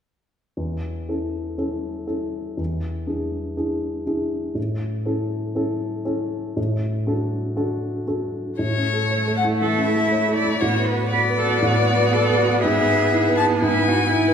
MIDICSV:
0, 0, Header, 1, 5, 480
1, 0, Start_track
1, 0, Key_signature, 3, "major"
1, 0, Tempo, 499168
1, 565, Time_signature, 4, 2, 24, 8
1, 5833, Tempo, 508044
1, 9193, Tempo, 499584
1, 13723, End_track
2, 0, Start_track
2, 0, Title_t, "Violin"
2, 0, Program_c, 0, 40
2, 8233, Note_on_c, 0, 73, 47
2, 8917, Note_off_c, 0, 73, 0
2, 8953, Note_on_c, 0, 78, 46
2, 9028, Note_off_c, 0, 78, 0
2, 9180, Note_on_c, 0, 76, 40
2, 9892, Note_off_c, 0, 76, 0
2, 9896, Note_on_c, 0, 74, 44
2, 10137, Note_on_c, 0, 73, 41
2, 10152, Note_off_c, 0, 74, 0
2, 10384, Note_on_c, 0, 71, 46
2, 10398, Note_off_c, 0, 73, 0
2, 10625, Note_off_c, 0, 71, 0
2, 10630, Note_on_c, 0, 74, 51
2, 12046, Note_off_c, 0, 74, 0
2, 12072, Note_on_c, 0, 76, 53
2, 12782, Note_off_c, 0, 76, 0
2, 12792, Note_on_c, 0, 81, 57
2, 12869, Note_off_c, 0, 81, 0
2, 13029, Note_on_c, 0, 80, 49
2, 13723, Note_off_c, 0, 80, 0
2, 13723, End_track
3, 0, Start_track
3, 0, Title_t, "Cello"
3, 0, Program_c, 1, 42
3, 9188, Note_on_c, 1, 69, 37
3, 9407, Note_off_c, 1, 69, 0
3, 9413, Note_on_c, 1, 64, 39
3, 10129, Note_off_c, 1, 64, 0
3, 10148, Note_on_c, 1, 66, 35
3, 10623, Note_off_c, 1, 66, 0
3, 10634, Note_on_c, 1, 71, 41
3, 10710, Note_off_c, 1, 71, 0
3, 10884, Note_on_c, 1, 69, 37
3, 11112, Note_off_c, 1, 69, 0
3, 11118, Note_on_c, 1, 66, 38
3, 11601, Note_on_c, 1, 69, 35
3, 11615, Note_off_c, 1, 66, 0
3, 11837, Note_on_c, 1, 66, 38
3, 11852, Note_off_c, 1, 69, 0
3, 12074, Note_off_c, 1, 66, 0
3, 12080, Note_on_c, 1, 68, 38
3, 13020, Note_off_c, 1, 68, 0
3, 13035, Note_on_c, 1, 64, 41
3, 13284, Note_on_c, 1, 66, 41
3, 13299, Note_off_c, 1, 64, 0
3, 13502, Note_off_c, 1, 66, 0
3, 13508, Note_on_c, 1, 64, 50
3, 13723, Note_off_c, 1, 64, 0
3, 13723, End_track
4, 0, Start_track
4, 0, Title_t, "Grand piano"
4, 0, Program_c, 2, 0
4, 548, Note_on_c, 2, 40, 28
4, 725, Control_c, 2, 64, 127
4, 1028, Note_off_c, 2, 40, 0
4, 1044, Note_on_c, 2, 61, 21
4, 1047, Note_on_c, 2, 64, 20
4, 1050, Note_on_c, 2, 69, 22
4, 1488, Note_off_c, 2, 61, 0
4, 1490, Note_off_c, 2, 64, 0
4, 1491, Note_off_c, 2, 69, 0
4, 1520, Note_on_c, 2, 61, 24
4, 1520, Note_on_c, 2, 64, 24
4, 1526, Note_on_c, 2, 69, 24
4, 1965, Note_off_c, 2, 61, 0
4, 1966, Note_off_c, 2, 64, 0
4, 1968, Note_off_c, 2, 69, 0
4, 1993, Note_on_c, 2, 61, 21
4, 1995, Note_on_c, 2, 64, 21
4, 1996, Note_on_c, 2, 69, 24
4, 2442, Note_off_c, 2, 61, 0
4, 2443, Note_off_c, 2, 64, 0
4, 2444, Note_off_c, 2, 69, 0
4, 2475, Note_on_c, 2, 40, 31
4, 2507, Control_c, 2, 64, 0
4, 2682, Control_c, 2, 64, 127
4, 2944, Note_off_c, 2, 40, 0
4, 2952, Note_on_c, 2, 62, 21
4, 2957, Note_on_c, 2, 64, 20
4, 2957, Note_on_c, 2, 68, 24
4, 3398, Note_off_c, 2, 62, 0
4, 3400, Note_off_c, 2, 64, 0
4, 3400, Note_off_c, 2, 68, 0
4, 3433, Note_on_c, 2, 62, 26
4, 3435, Note_on_c, 2, 64, 26
4, 3438, Note_on_c, 2, 68, 27
4, 3875, Note_off_c, 2, 62, 0
4, 3876, Note_off_c, 2, 64, 0
4, 3877, Note_off_c, 2, 68, 0
4, 3907, Note_on_c, 2, 62, 22
4, 3914, Note_on_c, 2, 64, 23
4, 3916, Note_on_c, 2, 68, 27
4, 4350, Note_off_c, 2, 62, 0
4, 4354, Note_off_c, 2, 64, 0
4, 4354, Note_off_c, 2, 68, 0
4, 4375, Note_on_c, 2, 45, 35
4, 4411, Control_c, 2, 64, 0
4, 4552, Control_c, 2, 64, 127
4, 4848, Note_off_c, 2, 45, 0
4, 4861, Note_on_c, 2, 61, 26
4, 4866, Note_on_c, 2, 64, 29
4, 4869, Note_on_c, 2, 69, 29
4, 5306, Note_off_c, 2, 61, 0
4, 5309, Note_off_c, 2, 64, 0
4, 5310, Note_off_c, 2, 69, 0
4, 5340, Note_on_c, 2, 61, 30
4, 5346, Note_on_c, 2, 64, 30
4, 5351, Note_on_c, 2, 69, 35
4, 5787, Note_off_c, 2, 61, 0
4, 5791, Note_off_c, 2, 64, 0
4, 5793, Note_off_c, 2, 69, 0
4, 5821, Note_on_c, 2, 61, 33
4, 5824, Note_on_c, 2, 64, 28
4, 5829, Note_on_c, 2, 69, 32
4, 6267, Note_off_c, 2, 61, 0
4, 6268, Note_off_c, 2, 64, 0
4, 6271, Note_off_c, 2, 69, 0
4, 6306, Note_on_c, 2, 45, 42
4, 6329, Control_c, 2, 64, 0
4, 6474, Control_c, 2, 64, 127
4, 6767, Note_off_c, 2, 45, 0
4, 6781, Note_on_c, 2, 62, 31
4, 6781, Note_on_c, 2, 66, 29
4, 6791, Note_on_c, 2, 69, 33
4, 7220, Note_off_c, 2, 62, 0
4, 7220, Note_off_c, 2, 66, 0
4, 7226, Note_off_c, 2, 69, 0
4, 7245, Note_on_c, 2, 62, 30
4, 7251, Note_on_c, 2, 66, 34
4, 7253, Note_on_c, 2, 69, 36
4, 7693, Note_off_c, 2, 62, 0
4, 7696, Note_off_c, 2, 66, 0
4, 7697, Note_off_c, 2, 69, 0
4, 7729, Note_on_c, 2, 62, 28
4, 7734, Note_on_c, 2, 66, 29
4, 7738, Note_on_c, 2, 69, 31
4, 8186, Note_off_c, 2, 62, 0
4, 8188, Note_off_c, 2, 66, 0
4, 8190, Note_off_c, 2, 69, 0
4, 8217, Note_on_c, 2, 45, 35
4, 8246, Control_c, 2, 64, 0
4, 8392, Note_on_c, 2, 61, 26
4, 8409, Control_c, 2, 64, 127
4, 8543, Note_on_c, 2, 69, 24
4, 8650, Note_off_c, 2, 61, 0
4, 8709, Note_on_c, 2, 73, 27
4, 8805, Note_off_c, 2, 69, 0
4, 8867, Note_on_c, 2, 69, 28
4, 8966, Note_off_c, 2, 73, 0
4, 9025, Note_on_c, 2, 64, 26
4, 9124, Note_off_c, 2, 69, 0
4, 9155, Note_off_c, 2, 45, 0
4, 9186, Note_on_c, 2, 52, 27
4, 9282, Note_off_c, 2, 64, 0
4, 9337, Note_on_c, 2, 61, 26
4, 9444, Note_off_c, 2, 52, 0
4, 9514, Note_on_c, 2, 69, 29
4, 9600, Note_off_c, 2, 61, 0
4, 9669, Note_on_c, 2, 73, 28
4, 9769, Note_off_c, 2, 69, 0
4, 9832, Note_on_c, 2, 69, 29
4, 9927, Note_off_c, 2, 73, 0
4, 9982, Note_on_c, 2, 64, 29
4, 10088, Note_off_c, 2, 69, 0
4, 10147, Note_off_c, 2, 64, 0
4, 10152, Note_on_c, 2, 45, 35
4, 10170, Control_c, 2, 64, 0
4, 10310, Note_on_c, 2, 59, 28
4, 10338, Control_c, 2, 64, 127
4, 10569, Note_off_c, 2, 59, 0
4, 10647, Note_on_c, 2, 66, 29
4, 10801, Note_on_c, 2, 71, 29
4, 10898, Note_off_c, 2, 66, 0
4, 10962, Note_on_c, 2, 66, 28
4, 11055, Note_off_c, 2, 71, 0
4, 11087, Note_off_c, 2, 45, 0
4, 11115, Note_on_c, 2, 45, 33
4, 11215, Note_off_c, 2, 66, 0
4, 11273, Note_on_c, 2, 59, 28
4, 11442, Note_on_c, 2, 71, 29
4, 11532, Note_off_c, 2, 59, 0
4, 11605, Note_on_c, 2, 66, 31
4, 11696, Note_off_c, 2, 71, 0
4, 11762, Note_on_c, 2, 71, 32
4, 11857, Note_off_c, 2, 66, 0
4, 11915, Note_on_c, 2, 66, 28
4, 12016, Note_off_c, 2, 71, 0
4, 12048, Note_off_c, 2, 45, 0
4, 12076, Note_off_c, 2, 66, 0
4, 12091, Note_on_c, 2, 44, 37
4, 12094, Control_c, 2, 64, 0
4, 12242, Note_on_c, 2, 59, 29
4, 12277, Control_c, 2, 64, 127
4, 12404, Note_on_c, 2, 71, 27
4, 12497, Note_off_c, 2, 59, 0
4, 12560, Note_on_c, 2, 64, 34
4, 12657, Note_off_c, 2, 71, 0
4, 12711, Note_on_c, 2, 71, 32
4, 12815, Note_off_c, 2, 64, 0
4, 12871, Note_on_c, 2, 64, 32
4, 12970, Note_off_c, 2, 71, 0
4, 13016, Note_off_c, 2, 44, 0
4, 13035, Note_on_c, 2, 44, 34
4, 13130, Note_off_c, 2, 64, 0
4, 13195, Note_on_c, 2, 59, 31
4, 13449, Note_off_c, 2, 59, 0
4, 13513, Note_on_c, 2, 64, 36
4, 13669, Note_on_c, 2, 71, 36
4, 13723, Note_off_c, 2, 44, 0
4, 13723, Note_off_c, 2, 64, 0
4, 13723, Note_off_c, 2, 71, 0
4, 13723, End_track
5, 0, Start_track
5, 0, Title_t, "Viola"
5, 0, Program_c, 3, 41
5, 8216, Note_on_c, 3, 57, 36
5, 10148, Note_on_c, 3, 59, 39
5, 10163, Note_off_c, 3, 57, 0
5, 13723, Note_off_c, 3, 59, 0
5, 13723, End_track
0, 0, End_of_file